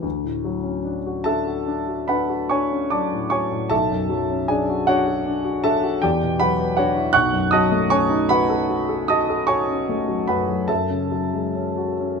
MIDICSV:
0, 0, Header, 1, 2, 480
1, 0, Start_track
1, 0, Tempo, 823045
1, 24, Time_signature, 9, 3, 24, 8
1, 1944, Tempo, 774194
1, 3384, Tempo, 750000
1, 4824, Tempo, 789474
1, 5784, Tempo, 818554
1, 6744, Tempo, 888889
1, 7326, End_track
2, 0, Start_track
2, 0, Title_t, "Grand piano"
2, 0, Program_c, 0, 0
2, 0, Control_c, 0, 64, 127
2, 14, Note_on_c, 0, 38, 41
2, 36, Control_c, 0, 64, 0
2, 141, Note_on_c, 0, 45, 30
2, 142, Control_c, 0, 64, 127
2, 259, Note_on_c, 0, 54, 37
2, 334, Note_off_c, 0, 45, 0
2, 370, Note_on_c, 0, 61, 34
2, 452, Note_off_c, 0, 54, 0
2, 494, Note_on_c, 0, 62, 36
2, 566, Note_off_c, 0, 61, 0
2, 621, Note_on_c, 0, 66, 40
2, 687, Note_off_c, 0, 62, 0
2, 724, Note_on_c, 0, 81, 74
2, 731, Note_on_c, 0, 76, 54
2, 733, Note_on_c, 0, 62, 41
2, 733, Note_on_c, 0, 69, 57
2, 810, Note_off_c, 0, 66, 0
2, 853, Note_on_c, 0, 66, 36
2, 926, Note_off_c, 0, 62, 0
2, 977, Note_on_c, 0, 62, 38
2, 1049, Note_off_c, 0, 66, 0
2, 1098, Note_on_c, 0, 66, 37
2, 1173, Note_off_c, 0, 62, 0
2, 1195, Note_off_c, 0, 76, 0
2, 1196, Note_off_c, 0, 69, 0
2, 1211, Note_on_c, 0, 83, 69
2, 1215, Note_off_c, 0, 81, 0
2, 1216, Note_on_c, 0, 71, 52
2, 1219, Note_on_c, 0, 78, 54
2, 1220, Note_on_c, 0, 62, 39
2, 1296, Note_off_c, 0, 66, 0
2, 1337, Note_on_c, 0, 66, 38
2, 1419, Note_off_c, 0, 62, 0
2, 1448, Note_off_c, 0, 71, 0
2, 1450, Note_off_c, 0, 78, 0
2, 1455, Note_on_c, 0, 85, 73
2, 1461, Note_on_c, 0, 73, 57
2, 1462, Note_on_c, 0, 80, 57
2, 1463, Note_off_c, 0, 83, 0
2, 1463, Note_on_c, 0, 62, 42
2, 1538, Note_off_c, 0, 66, 0
2, 1583, Note_on_c, 0, 61, 39
2, 1660, Note_off_c, 0, 62, 0
2, 1690, Note_off_c, 0, 73, 0
2, 1690, Note_off_c, 0, 80, 0
2, 1694, Note_on_c, 0, 86, 66
2, 1700, Note_on_c, 0, 81, 53
2, 1701, Note_on_c, 0, 54, 34
2, 1702, Note_on_c, 0, 74, 52
2, 1704, Note_off_c, 0, 85, 0
2, 1778, Note_off_c, 0, 61, 0
2, 1820, Note_on_c, 0, 45, 34
2, 1892, Note_off_c, 0, 54, 0
2, 1921, Note_off_c, 0, 81, 0
2, 1922, Note_off_c, 0, 74, 0
2, 1924, Note_on_c, 0, 85, 72
2, 1932, Note_on_c, 0, 54, 36
2, 1932, Note_on_c, 0, 80, 54
2, 1934, Note_off_c, 0, 86, 0
2, 1934, Note_on_c, 0, 73, 56
2, 2010, Note_off_c, 0, 45, 0
2, 2059, Note_on_c, 0, 45, 36
2, 2130, Note_off_c, 0, 54, 0
2, 2153, Note_off_c, 0, 38, 0
2, 2160, Note_off_c, 0, 80, 0
2, 2161, Note_off_c, 0, 73, 0
2, 2168, Note_on_c, 0, 81, 80
2, 2173, Note_on_c, 0, 35, 49
2, 2174, Note_off_c, 0, 85, 0
2, 2175, Note_on_c, 0, 69, 63
2, 2177, Note_on_c, 0, 76, 62
2, 2181, Note_off_c, 0, 45, 0
2, 2192, Control_c, 0, 64, 0
2, 2294, Control_c, 0, 64, 127
2, 2299, Note_on_c, 0, 42, 36
2, 2416, Note_on_c, 0, 54, 43
2, 2498, Note_off_c, 0, 42, 0
2, 2547, Note_on_c, 0, 61, 39
2, 2618, Note_off_c, 0, 54, 0
2, 2642, Note_off_c, 0, 69, 0
2, 2643, Note_off_c, 0, 76, 0
2, 2657, Note_on_c, 0, 80, 71
2, 2662, Note_on_c, 0, 62, 44
2, 2662, Note_on_c, 0, 68, 52
2, 2664, Note_off_c, 0, 81, 0
2, 2664, Note_on_c, 0, 74, 53
2, 2742, Note_off_c, 0, 61, 0
2, 2790, Note_on_c, 0, 66, 47
2, 2858, Note_off_c, 0, 62, 0
2, 2887, Note_off_c, 0, 68, 0
2, 2888, Note_off_c, 0, 74, 0
2, 2894, Note_off_c, 0, 66, 0
2, 2897, Note_on_c, 0, 78, 85
2, 2902, Note_off_c, 0, 80, 0
2, 2904, Note_on_c, 0, 66, 64
2, 2905, Note_on_c, 0, 62, 50
2, 2905, Note_on_c, 0, 73, 61
2, 3014, Note_off_c, 0, 66, 0
2, 3095, Note_off_c, 0, 62, 0
2, 3138, Note_on_c, 0, 62, 47
2, 3254, Note_on_c, 0, 66, 46
2, 3332, Note_off_c, 0, 62, 0
2, 3356, Note_off_c, 0, 73, 0
2, 3372, Note_on_c, 0, 81, 87
2, 3375, Note_on_c, 0, 69, 66
2, 3377, Note_off_c, 0, 78, 0
2, 3377, Note_on_c, 0, 62, 48
2, 3377, Note_on_c, 0, 76, 66
2, 3452, Note_off_c, 0, 66, 0
2, 3497, Note_on_c, 0, 66, 46
2, 3576, Note_off_c, 0, 62, 0
2, 3597, Note_off_c, 0, 35, 0
2, 3606, Note_off_c, 0, 69, 0
2, 3607, Note_off_c, 0, 76, 0
2, 3615, Note_on_c, 0, 79, 73
2, 3621, Note_on_c, 0, 67, 57
2, 3622, Note_off_c, 0, 81, 0
2, 3623, Note_off_c, 0, 66, 0
2, 3623, Note_on_c, 0, 40, 57
2, 3623, Note_on_c, 0, 74, 55
2, 3636, Control_c, 0, 64, 0
2, 3722, Control_c, 0, 64, 127
2, 3749, Note_on_c, 0, 47, 42
2, 3848, Note_off_c, 0, 67, 0
2, 3848, Note_off_c, 0, 74, 0
2, 3857, Note_on_c, 0, 83, 89
2, 3861, Note_off_c, 0, 79, 0
2, 3863, Note_on_c, 0, 54, 44
2, 3863, Note_on_c, 0, 78, 63
2, 3864, Note_on_c, 0, 71, 61
2, 3939, Note_off_c, 0, 47, 0
2, 3985, Note_on_c, 0, 59, 46
2, 4054, Note_off_c, 0, 54, 0
2, 4083, Note_off_c, 0, 78, 0
2, 4084, Note_off_c, 0, 71, 0
2, 4095, Note_on_c, 0, 78, 78
2, 4097, Note_off_c, 0, 83, 0
2, 4102, Note_on_c, 0, 73, 61
2, 4106, Note_on_c, 0, 62, 46
2, 4106, Note_on_c, 0, 66, 61
2, 4172, Note_off_c, 0, 59, 0
2, 4218, Note_on_c, 0, 64, 46
2, 4291, Note_off_c, 0, 62, 0
2, 4313, Note_off_c, 0, 40, 0
2, 4320, Note_off_c, 0, 73, 0
2, 4322, Note_off_c, 0, 66, 0
2, 4323, Note_off_c, 0, 78, 0
2, 4326, Note_on_c, 0, 90, 102
2, 4332, Note_on_c, 0, 85, 77
2, 4333, Note_on_c, 0, 78, 74
2, 4335, Note_on_c, 0, 35, 57
2, 4336, Note_off_c, 0, 64, 0
2, 4347, Control_c, 0, 64, 0
2, 4448, Control_c, 0, 64, 127
2, 4451, Note_on_c, 0, 42, 43
2, 4557, Note_off_c, 0, 85, 0
2, 4558, Note_off_c, 0, 78, 0
2, 4570, Note_on_c, 0, 87, 92
2, 4571, Note_off_c, 0, 90, 0
2, 4579, Note_on_c, 0, 81, 76
2, 4580, Note_on_c, 0, 75, 76
2, 4581, Note_on_c, 0, 54, 50
2, 4647, Note_off_c, 0, 42, 0
2, 4703, Note_on_c, 0, 57, 47
2, 4776, Note_off_c, 0, 54, 0
2, 4807, Note_off_c, 0, 81, 0
2, 4808, Note_off_c, 0, 75, 0
2, 4820, Note_off_c, 0, 87, 0
2, 4822, Note_on_c, 0, 85, 94
2, 4826, Note_on_c, 0, 61, 48
2, 4827, Note_on_c, 0, 73, 71
2, 4827, Note_on_c, 0, 80, 67
2, 4896, Note_off_c, 0, 57, 0
2, 4941, Note_on_c, 0, 63, 49
2, 5015, Note_off_c, 0, 61, 0
2, 5047, Note_off_c, 0, 73, 0
2, 5047, Note_off_c, 0, 80, 0
2, 5058, Note_on_c, 0, 83, 99
2, 5061, Note_off_c, 0, 85, 0
2, 5066, Note_on_c, 0, 71, 68
2, 5067, Note_on_c, 0, 78, 74
2, 5069, Note_on_c, 0, 66, 53
2, 5133, Note_off_c, 0, 63, 0
2, 5184, Note_on_c, 0, 69, 50
2, 5256, Note_off_c, 0, 66, 0
2, 5305, Note_on_c, 0, 66, 47
2, 5373, Note_off_c, 0, 69, 0
2, 5422, Note_on_c, 0, 69, 45
2, 5494, Note_off_c, 0, 66, 0
2, 5518, Note_off_c, 0, 71, 0
2, 5518, Note_off_c, 0, 78, 0
2, 5539, Note_off_c, 0, 83, 0
2, 5539, Note_on_c, 0, 87, 84
2, 5547, Note_on_c, 0, 75, 67
2, 5547, Note_on_c, 0, 81, 71
2, 5549, Note_on_c, 0, 66, 49
2, 5613, Note_off_c, 0, 69, 0
2, 5667, Note_on_c, 0, 69, 47
2, 5738, Note_off_c, 0, 66, 0
2, 5769, Note_off_c, 0, 75, 0
2, 5769, Note_off_c, 0, 81, 0
2, 5774, Note_on_c, 0, 85, 89
2, 5777, Note_on_c, 0, 66, 48
2, 5778, Note_on_c, 0, 73, 66
2, 5779, Note_on_c, 0, 80, 65
2, 5782, Note_off_c, 0, 87, 0
2, 5856, Note_off_c, 0, 69, 0
2, 5904, Note_on_c, 0, 61, 41
2, 5968, Note_off_c, 0, 66, 0
2, 6022, Note_on_c, 0, 57, 37
2, 6091, Note_off_c, 0, 61, 0
2, 6135, Note_on_c, 0, 54, 37
2, 6209, Note_off_c, 0, 57, 0
2, 6229, Note_off_c, 0, 73, 0
2, 6229, Note_off_c, 0, 80, 0
2, 6247, Note_on_c, 0, 83, 70
2, 6250, Note_off_c, 0, 85, 0
2, 6255, Note_on_c, 0, 42, 36
2, 6255, Note_on_c, 0, 71, 52
2, 6255, Note_on_c, 0, 78, 53
2, 6325, Note_off_c, 0, 54, 0
2, 6372, Note_on_c, 0, 54, 35
2, 6446, Note_off_c, 0, 42, 0
2, 6470, Note_off_c, 0, 35, 0
2, 6478, Note_off_c, 0, 71, 0
2, 6478, Note_off_c, 0, 78, 0
2, 6483, Note_on_c, 0, 81, 71
2, 6488, Note_on_c, 0, 42, 49
2, 6490, Note_on_c, 0, 69, 51
2, 6490, Note_on_c, 0, 76, 54
2, 6491, Note_off_c, 0, 83, 0
2, 6494, Note_off_c, 0, 54, 0
2, 6504, Control_c, 0, 64, 0
2, 6584, Control_c, 0, 64, 127
2, 6618, Note_on_c, 0, 49, 33
2, 6738, Note_on_c, 0, 54, 37
2, 6813, Note_off_c, 0, 49, 0
2, 6860, Note_on_c, 0, 56, 34
2, 6929, Note_off_c, 0, 54, 0
2, 6978, Note_on_c, 0, 61, 37
2, 7051, Note_off_c, 0, 56, 0
2, 7096, Note_on_c, 0, 66, 36
2, 7172, Note_off_c, 0, 61, 0
2, 7216, Note_on_c, 0, 61, 41
2, 7292, Note_off_c, 0, 66, 0
2, 7326, Note_off_c, 0, 42, 0
2, 7326, Note_off_c, 0, 61, 0
2, 7326, Note_off_c, 0, 69, 0
2, 7326, Note_off_c, 0, 76, 0
2, 7326, Note_off_c, 0, 81, 0
2, 7326, End_track
0, 0, End_of_file